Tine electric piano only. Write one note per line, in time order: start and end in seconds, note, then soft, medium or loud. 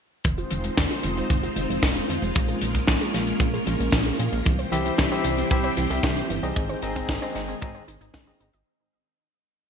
4.72 5.08 C4 medium
4.72 5.08 E4 medium
4.72 5.08 G4 medium
4.72 5.08 E5 loud
5.12 5.48 C4 medium
5.12 5.48 E4 medium
5.12 5.48 G4 medium
5.12 5.48 E5 loud
5.51 5.72 C4 loud
5.51 5.72 E4 medium
5.51 5.72 G4 medium
5.51 5.72 E5 loud
5.90 6.40 C4 medium
5.90 6.40 E4 medium
5.90 6.40 G4 medium
5.90 6.40 E5 medium
6.43 6.79 C4 medium
6.43 6.79 D#4 medium
6.43 6.79 G#4 medium
6.43 6.79 D#5 medium
6.83 7.19 C4 medium
6.83 7.19 D#4 medium
6.83 7.19 G#4 medium
6.83 7.19 D#5 loud
7.22 7.58 C4 medium
7.22 7.58 D#4 medium
7.22 7.58 G#4 medium
7.22 7.58 D#5 loud
7.62 7.82 C4 loud
7.62 7.82 D#4 medium
7.62 7.82 G#4 medium
7.62 7.82 D#5 loud
8.27 8.48 C4 medium
8.27 8.48 D#4 medium
8.27 8.48 G#4 medium
8.27 8.48 D#5 medium